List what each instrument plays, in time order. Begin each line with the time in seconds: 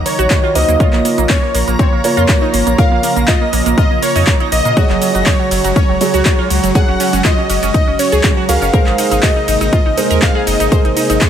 Already playing: analog synth pad C#3 F#3 D#4, grand piano D#3 D#4 F#4 C#5, synth texture A#5 A#6
0.06 synth arpeggio sound A#3, digital synth lead C#5, open hi-hat, shaker
0.19 sub bass A#1, synth arpeggio sound F#4, closed hi-hat, shaker
0.30 grand piano D#3 D#4 F#4 C#5, synth arpeggio sound A#3, kick, clap, closed hi-hat, shaker
0.44 synth arpeggio sound F4
0.55 sub bass C#2, synth arpeggio sound A#3, grand piano D#4 F#4 C5, digital synth lead D#5, open hi-hat, shaker
0.68 sub bass D#2, synth arpeggio sound A#3, closed hi-hat, shaker
0.80 analog synth pad F3 A#3 F4, grand piano A#3 F4 A#4 C#5, synth arpeggio sound F4, kick, closed hi-hat, shaker
0.93 sub bass A#1, synth arpeggio sound A#3, clap
1.05 synth arpeggio sound A#3, open hi-hat, shaker
1.18 sub bass A#1, synth arpeggio sound A#3, closed hi-hat, shaker
1.29 synth arpeggio sound C#4, digital synth lead C#5, kick, clap, open hi-hat, shaker
1.43 synth arpeggio sound A#3
1.54 sub bass A#1, synth arpeggio sound A#3, open hi-hat, shaker
1.68 sub bass A#1, synth arpeggio sound A#3, closed hi-hat, shaker
1.79 synth arpeggio sound C4, digital synth lead C#5, kick, closed hi-hat, shaker
1.92 sub bass A#1, synth arpeggio sound A#3
2.04 synth arpeggio sound A#3, grand piano A#3 F4 A#4 C#5, open hi-hat, shaker
2.17 sub bass F2, synth arpeggio sound F4, closed hi-hat, shaker
2.29 synth arpeggio sound A#3, kick, clap, closed hi-hat, shaker
2.42 synth arpeggio sound D#4
2.54 sub bass G#1, synth arpeggio sound A#3, open hi-hat, shaker
2.67 sub bass A#1, synth arpeggio sound A#3, closed hi-hat, shaker
2.78 grand piano A#3 F4 A#4 C#5, synth arpeggio sound A#4, digital synth lead F5, kick, closed hi-hat, shaker
2.92 sub bass A#1, synth arpeggio sound A#3
3.03 synth arpeggio sound A#3, open hi-hat, shaker
3.16 sub bass A#1, synth arpeggio sound A#3, closed hi-hat, shaker
3.28 synth arpeggio sound F4, digital synth lead D#5, kick, clap, closed hi-hat, shaker
3.41 synth arpeggio sound A#3
3.53 sub bass A#1, synth arpeggio sound A#3, open hi-hat, shaker
3.66 sub bass A#1, synth arpeggio sound A#3, closed hi-hat, shaker
3.78 synth arpeggio sound F4, digital synth lead D#5, kick, closed hi-hat, shaker
3.91 sub bass A#1, synth arpeggio sound A#3
4.02 synth arpeggio sound A#3, digital synth lead C#5, open hi-hat, shaker
4.15 sub bass F2, synth arpeggio sound D#4, open hi-hat, shaker
4.27 synth arpeggio sound A#3, kick, clap, closed hi-hat, shaker
4.40 synth arpeggio sound D#4, closed hi-hat
4.52 sub bass A#1, synth arpeggio sound A#3, digital synth lead D#5, open hi-hat, shaker
4.65 sub bass A#2, synth arpeggio sound A#3, closed hi-hat, shaker
4.77 grand piano F#3 F#4 G#4 C#5, analog synth pad F#3 G#3 F#4, synth arpeggio sound F#4, kick, closed hi-hat, ride, shaker
4.90 sub bass F#1, synth arpeggio sound F#3, clap
5.02 synth arpeggio sound F#3, open hi-hat, ride, shaker
5.15 sub bass F#1, synth arpeggio sound F#3, closed hi-hat, shaker
5.26 synth arpeggio sound D#4, digital synth lead C#5, kick, clap, open hi-hat, ride, shaker
5.40 synth arpeggio sound F#3
5.51 sub bass F#1, synth arpeggio sound F#3, open hi-hat, ride, shaker
5.64 sub bass F#1, synth arpeggio sound F#3, closed hi-hat, shaker
5.76 synth arpeggio sound C#4, digital synth lead C#5, kick, closed hi-hat, ride, shaker
5.89 sub bass F#1, synth arpeggio sound F#3
6.01 synth arpeggio sound F#3, grand piano F#3 F#4 G#4 C#5, open hi-hat, ride, shaker
6.14 sub bass C#2, synth arpeggio sound F#4, closed hi-hat, shaker
6.25 synth arpeggio sound F#3, kick, clap, closed hi-hat, ride, shaker
6.39 synth arpeggio sound F4
6.50 sub bass C#2, synth arpeggio sound F#3, open hi-hat, ride, shaker
6.63 sub bass F#1, synth arpeggio sound F#3, closed hi-hat, shaker
6.75 grand piano F#3 F#4 G#4 C#5, synth arpeggio sound G#4, digital synth lead F#5, kick, closed hi-hat, ride, shaker
6.88 sub bass F#1, synth arpeggio sound C#4
7.00 synth arpeggio sound C#4, open hi-hat, ride, shaker
7.13 sub bass F#1, synth arpeggio sound C#4, closed hi-hat, shaker
7.24 synth arpeggio sound F4, digital synth lead D#5, kick, clap, closed hi-hat, shaker
7.38 synth arpeggio sound C#4
7.50 sub bass F#1, synth arpeggio sound C#4, open hi-hat, ride, shaker
7.63 sub bass F#1, synth arpeggio sound C#4, closed hi-hat, shaker
7.74 synth arpeggio sound D#4, digital synth lead D#5, kick, closed hi-hat, shaker
7.87 sub bass F#1, synth arpeggio sound C#4
7.99 synth arpeggio sound C#4, digital synth lead C#5, open hi-hat, ride, shaker
8.12 sub bass C#2, synth arpeggio sound G#4, closed hi-hat, shaker
8.24 grand piano F#3 F#4 G#4 C#5, synth arpeggio sound C#4, kick, clap, closed hi-hat, ride, shaker
8.37 synth arpeggio sound F#4
8.49 sub bass C#2, synth arpeggio sound C#4, grand piano F#4 G#4 A#4, digital synth lead F5, open hi-hat, ride, shaker
8.62 sub bass F#1, synth arpeggio sound C#4, closed hi-hat, shaker
8.74 analog synth pad C3 G#3 A#3 D#4, grand piano G#3 G#4 A#4 C5, synth arpeggio sound A#4, kick, closed hi-hat, ride, shaker
8.86 sub bass G#1, synth arpeggio sound D#4, clap
8.98 synth arpeggio sound D#4, open hi-hat, ride, shaker
9.11 sub bass G#1, synth arpeggio sound D#4, closed hi-hat, shaker
9.23 synth arpeggio sound F#4, digital synth lead D#5, kick, clap, open hi-hat, ride, shaker
9.36 synth arpeggio sound D#4
9.48 sub bass G#1, synth arpeggio sound D#4, open hi-hat, ride, shaker
9.61 sub bass G#1, synth arpeggio sound D#4, closed hi-hat, shaker
9.73 synth arpeggio sound F4, digital synth lead D#5, kick, closed hi-hat, ride, shaker
9.86 sub bass G#1, synth arpeggio sound D#4
9.97 grand piano G#3 G#4 A#4 C5, synth arpeggio sound D#4, open hi-hat, ride, shaker
10.11 sub bass D#2, synth arpeggio sound A#4, closed hi-hat, shaker
10.22 synth arpeggio sound D#4, digital synth lead F5, kick, clap, closed hi-hat, ride, shaker
10.35 synth arpeggio sound G#4
10.47 sub bass F#1, synth arpeggio sound D#4, digital synth lead D#5, open hi-hat, ride, shaker
10.60 sub bass G#1, synth arpeggio sound D#4, closed hi-hat, shaker
10.72 grand piano G#3 G#4 A#4 C5, synth arpeggio sound C5, kick, closed hi-hat, ride, shaker
10.85 sub bass G#1, synth arpeggio sound D#4, closed hi-hat
10.97 synth arpeggio sound D#4, open hi-hat, ride, shaker
11.10 sub bass G#1, synth arpeggio sound D#4, closed hi-hat, shaker
11.21 synth arpeggio sound G#4, kick, clap, closed hi-hat, shaker